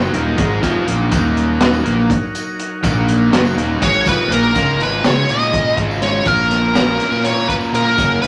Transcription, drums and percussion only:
0.02 tambourine
0.14 closed hi-hat
0.38 kick, closed hi-hat
0.51 tambourine
0.63 kick, snare, closed hi-hat, tambourine
0.88 closed hi-hat
1.12 kick, closed hi-hat, tambourine
1.25 tambourine
1.37 closed hi-hat
1.61 snare, closed hi-hat
1.73 tambourine
1.86 closed hi-hat
2.10 kick, closed hi-hat
2.23 tambourine
2.35 closed hi-hat, tambourine
2.59 closed hi-hat
2.83 kick, closed hi-hat, tambourine
2.97 tambourine
3.08 closed hi-hat, tambourine
3.33 snare, closed hi-hat
3.45 tambourine
3.58 closed hi-hat
3.69 tambourine
3.82 kick, closed hi-hat
4.06 kick, closed hi-hat, tambourine
4.32 closed hi-hat
4.55 kick, closed hi-hat, tambourine
4.80 closed hi-hat, tambourine
5.04 snare, closed hi-hat, tambourine
5.29 closed hi-hat
5.42 tambourine
5.53 kick, closed hi-hat
5.67 tambourine
5.77 kick, closed hi-hat
5.91 tambourine
6.02 snare, closed hi-hat, tambourine
6.16 tambourine
6.25 kick, closed hi-hat, tambourine
6.51 snare, closed hi-hat, tambourine
6.75 snare, closed hi-hat, tambourine
7.00 snare, closed hi-hat
7.12 tambourine
7.24 snare, closed hi-hat
7.36 tambourine
7.49 kick, closed hi-hat
7.61 tambourine
7.73 closed hi-hat, tambourine
7.86 tambourine
7.98 kick, closed hi-hat, tambourine
8.23 closed hi-hat

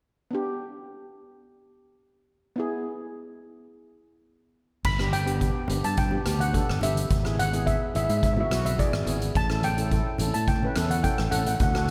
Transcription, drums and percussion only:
4.84 kick, crash
4.99 cross-stick
5.12 closed hi-hat, high conga
5.27 closed hi-hat
5.41 kick, closed hi-hat
5.68 closed hi-hat, low conga
5.84 closed hi-hat
5.96 kick, closed hi-hat, high conga
6.11 high conga
6.26 cross-stick, closed hi-hat
6.39 closed hi-hat, high conga
6.54 kick, closed hi-hat
6.69 cross-stick
6.81 closed hi-hat, low conga
6.95 closed hi-hat, high conga
7.11 kick, closed hi-hat
7.25 cross-stick
7.38 closed hi-hat, high conga
7.53 closed hi-hat
7.67 kick, closed hi-hat
7.95 closed hi-hat
8.09 closed hi-hat
8.22 kick, closed hi-hat, high conga
8.37 high conga
8.51 cross-stick, closed hi-hat
8.65 closed hi-hat, high conga
8.79 kick, closed hi-hat
8.93 cross-stick
9.07 closed hi-hat, low conga
9.21 closed hi-hat, high conga
9.35 kick, closed hi-hat
9.50 cross-stick
9.62 closed hi-hat, high conga
9.78 closed hi-hat
9.91 kick, closed hi-hat
10.18 closed hi-hat, low conga
10.34 closed hi-hat
10.48 kick, closed hi-hat, high conga
10.63 high conga
10.76 cross-stick, closed hi-hat
10.89 closed hi-hat, high conga
11.04 kick, closed hi-hat
11.18 cross-stick
11.32 closed hi-hat, low conga
11.46 closed hi-hat, high conga
11.60 kick, closed hi-hat
11.75 cross-stick

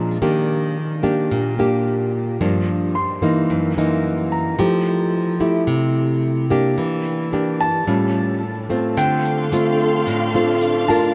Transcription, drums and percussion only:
8.98 shaker
9.25 shaker
9.52 shaker
9.80 shaker
10.07 shaker
10.34 shaker
10.61 shaker
10.89 shaker

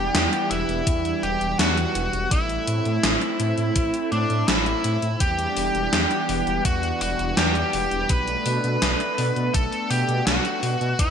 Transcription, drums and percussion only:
0.15 snare, closed hi-hat
0.33 closed hi-hat
0.51 closed hi-hat
0.69 closed hi-hat
0.87 kick, closed hi-hat
1.05 closed hi-hat
1.23 closed hi-hat
1.41 closed hi-hat
1.59 snare, closed hi-hat
1.77 closed hi-hat
1.95 closed hi-hat
2.13 closed hi-hat
2.31 kick, closed hi-hat
2.49 closed hi-hat
2.67 closed hi-hat
2.85 closed hi-hat
3.03 snare, closed hi-hat
3.21 closed hi-hat
3.40 closed hi-hat
3.58 closed hi-hat
3.76 kick, closed hi-hat
3.94 closed hi-hat
4.12 closed hi-hat
4.30 closed hi-hat
4.48 snare, closed hi-hat
4.66 closed hi-hat
4.84 closed hi-hat
5.02 closed hi-hat
5.20 kick, closed hi-hat
5.39 closed hi-hat
5.57 open hi-hat
5.75 closed hi-hat
5.93 snare, closed hi-hat
6.11 closed hi-hat
6.29 open hi-hat
6.47 closed hi-hat
6.65 kick, closed hi-hat
6.83 closed hi-hat
7.01 open hi-hat
7.19 closed hi-hat
7.37 snare, closed hi-hat
7.55 closed hi-hat
7.73 open hi-hat
7.91 closed hi-hat
8.09 kick, closed hi-hat
8.27 closed hi-hat
8.46 open hi-hat
8.64 closed hi-hat
8.82 snare, closed hi-hat
9.00 closed hi-hat
9.18 open hi-hat
9.36 closed hi-hat
9.54 kick, closed hi-hat
9.72 closed hi-hat
9.91 open hi-hat
10.09 closed hi-hat
10.27 snare, closed hi-hat
10.45 closed hi-hat
10.63 open hi-hat
10.81 closed hi-hat
10.99 kick, closed hi-hat

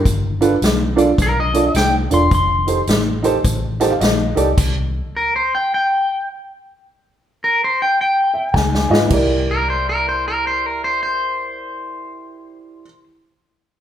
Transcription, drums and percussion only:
0.05 kick, closed hi-hat
0.42 closed hi-hat
0.62 snare, closed hi-hat
0.98 closed hi-hat
1.18 kick, snare, closed hi-hat
1.54 closed hi-hat
1.75 snare, closed hi-hat
2.11 closed hi-hat
2.31 kick, closed hi-hat
2.68 closed hi-hat
2.87 snare, closed hi-hat
3.24 closed hi-hat
3.44 kick, closed hi-hat
3.80 snare, closed hi-hat
4.01 snare, closed hi-hat
4.37 closed hi-hat
4.58 kick, closed hi-hat, crash
8.54 kick, snare
8.75 snare
8.94 snare
9.10 kick, crash

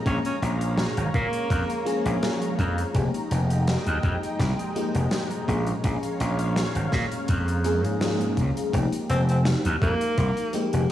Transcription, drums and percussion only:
0.06 kick, closed hi-hat
0.25 closed hi-hat
0.43 closed hi-hat
0.61 closed hi-hat
0.78 snare, closed hi-hat
0.97 closed hi-hat
1.14 kick, closed hi-hat
1.33 closed hi-hat
1.50 kick, closed hi-hat
1.70 closed hi-hat
1.87 closed hi-hat
2.06 closed hi-hat
2.23 snare, closed hi-hat
2.42 closed hi-hat
2.59 kick, closed hi-hat
2.78 closed hi-hat
2.95 kick, closed hi-hat
3.14 closed hi-hat
3.31 closed hi-hat
3.50 closed hi-hat
3.68 snare, closed hi-hat
3.86 closed hi-hat
4.03 kick, closed hi-hat
4.23 closed hi-hat
4.39 kick, snare, closed hi-hat
4.59 closed hi-hat
4.76 closed hi-hat
4.95 closed hi-hat
5.11 snare, closed hi-hat
5.31 closed hi-hat
5.48 kick, closed hi-hat
5.67 closed hi-hat
5.84 kick, closed hi-hat
6.03 closed hi-hat
6.20 closed hi-hat
6.39 closed hi-hat
6.56 snare, closed hi-hat
6.75 closed hi-hat
6.92 kick, snare, closed hi-hat
7.12 closed hi-hat
7.28 kick, closed hi-hat
7.48 closed hi-hat
7.64 closed hi-hat
7.84 closed hi-hat
8.01 snare, closed hi-hat
8.21 closed hi-hat
8.37 kick, closed hi-hat
8.57 closed hi-hat
8.73 kick, closed hi-hat
8.93 closed hi-hat
9.10 closed hi-hat
9.29 closed hi-hat
9.45 snare, closed hi-hat
9.65 closed hi-hat
9.82 kick, closed hi-hat
10.01 closed hi-hat
10.18 kick, closed hi-hat
10.37 closed hi-hat
10.53 closed hi-hat
10.73 closed hi-hat

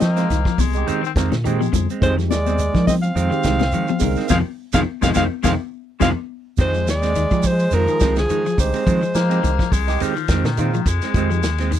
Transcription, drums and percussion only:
0.00 snare, closed hi-hat, high conga, shekere
0.17 snare, closed hi-hat, shekere
0.30 snare, closed hi-hat, shekere
0.45 kick, snare, shekere
0.58 kick, open hi-hat, high conga, low conga, shekere
0.73 closed hi-hat, shekere
0.87 closed hi-hat, shekere
1.05 shekere
1.16 kick, snare, closed hi-hat, shekere
1.32 snare, high conga, shekere
1.45 closed hi-hat, shekere
1.61 high conga, shekere
1.73 kick, closed hi-hat, low conga, shekere
1.90 closed hi-hat, shekere
2.02 kick, closed hi-hat, low conga, shekere
2.19 snare, shekere
2.31 snare, closed hi-hat, high conga, shekere
2.46 closed hi-hat, high conga, shekere
2.59 closed hi-hat, shekere
2.75 kick, snare, shekere
2.87 kick, open hi-hat, high conga, low conga, shekere
3.03 closed hi-hat, shekere
3.17 closed hi-hat, shekere
3.32 shekere
3.44 kick, snare, closed hi-hat, shekere
3.59 snare, high conga, shekere
3.72 closed hi-hat, shekere
3.88 high conga, shekere
4.00 kick, open hi-hat, low conga, shekere
4.16 snare, shekere
4.29 kick, snare, high conga, shekere
4.73 kick, snare, high conga, shekere
5.03 kick, snare, high conga, shekere
5.15 kick, snare, high conga, shekere
5.44 kick, snare, high conga, shekere
6.00 kick, snare, high conga, shekere
6.57 kick, crash, shekere
6.74 shekere
6.88 snare, ride bell, shekere
7.03 snare, ride bell, shekere
7.15 ride bell, shekere
7.31 kick, shekere
7.43 kick, open hi-hat, shekere
7.59 ride bell, shekere
7.71 ride bell, shekere
7.88 shekere
8.00 kick, snare, ride bell, shekere
8.16 snare, ride bell, shekere
8.30 ride bell, shekere
8.46 shekere
8.58 kick, open hi-hat, shekere
8.74 ride bell, shekere
8.87 kick, ride bell, shekere
9.03 shekere
9.15 snare, ride bell, shekere
9.31 ride bell, shekere
9.44 ride bell, shekere
9.59 kick, snare, shekere
9.72 kick, open hi-hat, shekere
9.88 snare, ride bell, shekere
10.00 ride bell, shekere
10.16 shekere
10.28 kick, snare, ride bell, shekere
10.45 snare, shekere
10.57 ride bell, shekere
10.74 shekere
10.86 kick, ride bell, shekere
11.02 snare, ride bell, shekere
11.14 kick, ride bell, shekere
11.31 shekere
11.43 snare, ride bell, shekere
11.58 snare, ride bell, shekere
11.72 ride bell, shekere

